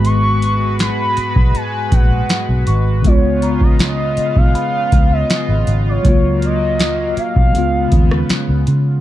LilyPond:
<<
  \new Staff \with { instrumentName = "Celesta" } { \time 4/4 \key des \mixolydian \tempo 4 = 80 r2. r8 des'''8~ | des'''8 bes''4 r8 ces'''4 r4 | r1 | }
  \new Staff \with { instrumentName = "Soft synth lead" } { \time 4/4 \key des \mixolydian des'''4 ces'''4 aes''8 ges''4 r8 | des''8. ees''16 ees''8. f''4 ees''4 des''16~ | des''8 ees''4 f''4. r4 | }
  \new Staff \with { instrumentName = "Analog synth pad" } { \time 4/4 \key des \mixolydian << { ces''1 | f'1~ | f'1 | } \\ { <aes ges'>1 | <des ces'>1 | <ges bes>2 <des ces'>2 | } >> }
  \new Staff \with { instrumentName = "Tine electric piano" } { \time 4/4 \key des \mixolydian <aes, aes ces' ges'>2.~ <aes, aes ces' ges'>8 r8 | <des aes ces' f'>1 | <ges bes f'>2 <des aes ces' f'>2 | }
  \new Staff \with { instrumentName = "Fingered electric bass" } { \clef bass \time 4/4 \key des \mixolydian aes,,4. r16 ces,16 r8 bes,,8 r16 ces,16 aes,,8 | des,4. r16 ces,16 r8 des,8 r16 aes,,16 aes,,8 | des,4. r16 ces,16 des,8 ees,8 r16 des,16 des8 | }
  \new DrumStaff \with { instrumentName = "Drums" } \drummode { \time 4/4 hh8 hh8 <hh sn>8 hh16 bd16 hh8 <hh bd>8 <hh sn>8 hh8 | <hh bd>8 hh16 bd16 <hh sn>8 hh16 bd16 hh8 <hh bd>8 <hh sn>8 hh8 | <hh bd>8 hh8 <hh sn>8 hh16 bd16 hh8 <hh bd>16 ss16 <hh sn>8 hh8 | }
>>